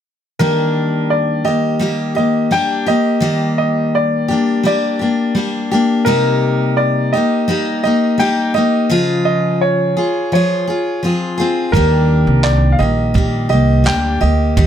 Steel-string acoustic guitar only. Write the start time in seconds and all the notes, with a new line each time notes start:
0.39 D#3 G3 A#3 D4 G4
1.45 A#3 G4
1.79 G3 A#3 G4
2.15 A#3 G4
2.51 G3 A#3 D4 G4
2.86 A#3 G4
3.21 D#3 G3 A#3 G4
4.28 A#3 D4 G4
4.63 G3 A#3 D4
4.68 G4
4.99 A#3 D4 G4
5.35 G3 A#3 D4 G4
5.71 A#3 D4 G4
6.06 C3 G3 A#3 D#4 G4
7.14 A#3 D#4 G4
7.48 G3 A#3 D#4 G4
7.83 A#3 D#4 G4
8.18 G3 A#3 D#4 G4
8.54 A#3 D#4 G4
8.90 C#3 F3 F4 G#4
9.97 F4 G#4
10.32 F3 F4 G#4
10.67 F4 G#4
11.03 F3 C4 F4 G#4
11.38 C4 F4 G#4
11.75 D#3 G3 A#3 D4 G4
12.79 A#3 G4
13.14 G3 A#3 G4
13.49 A#3 G4
13.84 G3 A#3 D4 G4
14.21 A#3 G4
14.57 D#3 G3 A#3 G4